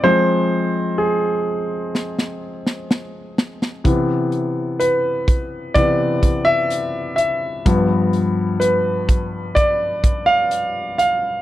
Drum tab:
HH |----------------|x-x-x-x-x-x-x-x-|x-x-x-x-x-x-x-x-|
SD |--------oo-oo-oo|----------------|----------------|
BD |----------------|o-----o-o-o-----|o-----o-o-o-----|